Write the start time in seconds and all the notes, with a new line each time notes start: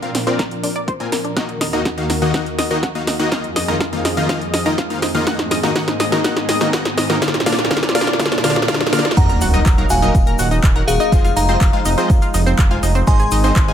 Already playing: A#2 F3 C4 D4 A#4
0.02 A#2 C4 F4 A#4 F5, closed hi-hat
0.15 C4, snare, open hi-hat
0.27 A#2 C4 F4 A#4 C5 D5, closed hi-hat
0.39 A#4, kick, snare, closed hi-hat
0.51 closed hi-hat
0.63 D4, open hi-hat
0.76 D5, closed hi-hat
0.88 C5, kick, closed hi-hat
1.00 A#2 C4 F4 A#4 G#5, closed hi-hat
1.12 A#4, snare, open hi-hat
1.24 D4, closed hi-hat
1.36 D#2 D#3 A#3 D#4 F#4 D#5 F#5, kick, snare, closed hi-hat, riser
1.49 closed hi-hat
1.61 D#5, snare, open hi-hat
1.73 D#3 A#3 D#4 F#4 A#4 D#5, closed hi-hat
1.85 F#4, kick, snare, closed hi-hat
1.98 D#3 A#3 D#4 F#4 F5, closed hi-hat
2.10 D#4, snare, open hi-hat
2.22 D#3 A#3 D#4 F#4 D#5 F#5, closed hi-hat
2.34 D#3 A#3 D#4 F#4 D#5 F#5, kick, snare, closed hi-hat
2.46 closed hi-hat
2.58 D#5, snare, open hi-hat
2.71 D#3 A#3 D#4 F#4 A#4 D#5, closed hi-hat
2.83 F#4, kick, snare, closed hi-hat
2.95 D#3 A#3 D#4 F#4 F5, closed hi-hat
3.07 D#4, snare, open hi-hat
3.19 D#3 A#3 D#4 F#4 D#5 F#5, closed hi-hat
3.31 F2 D#3 F3 A#3 C4 D#4 F4 G#4 D#5 F5, kick, snare, closed hi-hat
3.44 closed hi-hat
3.56 D#5, snare, open hi-hat
3.68 D#3 A#3 D#4 F4 A#4 D#5, closed hi-hat
3.80 F4, kick, snare, closed hi-hat
3.93 D#3 A#3 D#4 F4 F5, closed hi-hat
4.05 D#4, snare, open hi-hat
4.17 D#3 A#3 D#4 F4 D#5 F5, closed hi-hat
4.29 D#3 A#3 D#4 F4 D#5 F5, kick, snare, closed hi-hat
4.41 closed hi-hat
4.54 D#5, snare, open hi-hat
4.66 D#3 A#3 D#4 F4 A#4 D#5, closed hi-hat
4.78 F4, kick, snare, closed hi-hat
4.90 D#3 A#3 D#4 F4 F5, closed hi-hat
5.02 D#4, snare, open hi-hat
5.15 D#3 A#3 D#4 F4 D#5 F5, closed hi-hat
5.27 G#2 D#3 A#3 D#4 F#4 G#4 D#5 F#5, kick, snare, closed hi-hat
5.39 snare, closed hi-hat
5.51 D#5, snare, open hi-hat
5.63 D#3 A#3 D#4 F#4 A#4 D#5, snare, closed hi-hat
5.76 D#3 A#3 D#4 F#4 D#5 F#5, kick, snare, closed hi-hat
5.88 snare, closed hi-hat
6.00 D#5, snare, open hi-hat
6.12 D#3 A#3 D#4 F#4 A#4 D#5, snare, closed hi-hat
6.24 D#3 A#3 D#4 F#4 D#5 F#5, kick, snare, closed hi-hat
6.37 snare, closed hi-hat
6.49 D#5, snare, open hi-hat
6.61 D#3 A#3 D#4 F#4 A#4 D#5, snare, closed hi-hat
6.73 D#3 A#3 D#4 F#4 F#5, kick, snare, closed hi-hat
6.85 snare, closed hi-hat
6.98 D#5, snare, open hi-hat
7.10 D#3 A#3 D#4 F#4 A#4 D#5, snare, closed hi-hat
7.22 A#2 D3 A#3 D4 F4 D5 F5, kick, snare, closed hi-hat
7.28 snare
7.34 snare, closed hi-hat
7.40 snare
7.46 D3 A#3 D4 F4 D5 F5, snare, open hi-hat
7.52 snare
7.59 snare, closed hi-hat
7.65 snare
7.71 D3 A#3 D4 F4 D5 F5, kick, snare, closed hi-hat
7.77 snare
7.83 snare, closed hi-hat
7.89 snare
7.95 D3 A#3 D4 F4 D5 F5, snare, open hi-hat
8.01 snare
8.07 snare, closed hi-hat
8.13 snare
8.19 D3 A#3 D4 F4 D5 F5, kick, snare, closed hi-hat
8.26 snare
8.32 snare, closed hi-hat
8.38 snare
8.44 D3 A#3 D4 F4 D5 F5, snare, open hi-hat
8.50 snare
8.56 snare, closed hi-hat
8.62 snare
8.68 D3 A#3 D4 F4 D5 F5, kick, snare, closed hi-hat
8.74 snare
8.81 snare, closed hi-hat
8.87 snare
8.93 D3 A#3 D4 F4 D5 F5, snare, open hi-hat
8.99 snare
9.05 snare, closed hi-hat
9.11 snare
9.17 D#1 F#3 A#3 D#4 A#4 D#5 F#5 A#5, kick, closed hi-hat, sub drop, shaker
9.29 A#4 A#5, closed hi-hat, shaker
9.41 D#1 F#4 F#5, open hi-hat, shaker
9.54 F#3 D#4 A#4 D#5, closed hi-hat, shaker
9.66 D#1, kick, clap, closed hi-hat, shaker
9.78 F#3 D#4 A#4 F5 A#5, closed hi-hat
9.90 D#1 F#4 F5 F#5 G#5, open hi-hat, shaker
10.02 F#3 D#4 A#4 D#5, closed hi-hat, shaker
10.15 D#1, kick, closed hi-hat, shaker
10.26 A#4 A#5, closed hi-hat, shaker
10.39 D#1 F#4 F#5, open hi-hat, shaker
10.51 D#4 D#5, closed hi-hat, shaker
10.63 D#1, kick, clap, closed hi-hat, shaker
10.75 F#3 D#4 A#4 F#5 A#5, closed hi-hat
10.88 D#1 F#4 G#4 F5 F#5, open hi-hat, shaker
11.00 D#4 D#5, closed hi-hat, shaker
11.12 F1 F3 G#3 F4 C5 D#5, kick, closed hi-hat, shaker
11.24 F4 F5, closed hi-hat, shaker
11.36 F1 D#4 D#5 F5 A#5, open hi-hat, shaker
11.48 G#3 C4 F4 C5 D#5, closed hi-hat, shaker
11.61 F1, kick, clap, closed hi-hat, shaker
11.73 G#3 F4 C5 F5, closed hi-hat
11.85 F1 D#4 D#5, open hi-hat, shaker
11.98 G#3 C4 F4 C5 D#5, closed hi-hat, shaker
12.10 F1, kick, closed hi-hat, shaker
12.22 F4 F5, closed hi-hat, shaker
12.34 F1 D#4 D#5, open hi-hat, shaker
12.46 C4 C5, closed hi-hat, shaker
12.58 F1, kick, clap, closed hi-hat, shaker
12.71 G#3 F4 C5 F5 G#5, closed hi-hat
12.83 F1 D#4 D#5, open hi-hat, shaker
12.95 C4 C5, closed hi-hat, shaker
13.07 G#1 G#2 D#3 G#3 C4 D#4 C5 D#5 G#5 C6, kick, closed hi-hat, shaker
13.20 G#4 G#5, closed hi-hat, shaker
13.31 G#1 D#4 D#5, open hi-hat, shaker
13.44 G#2 G#3 C4 D#4 C5 D#5, closed hi-hat, shaker
13.56 G#1, kick, clap, closed hi-hat, shaker
13.68 G#2 G#3 D#4 G#4 C5 F5 G#5, closed hi-hat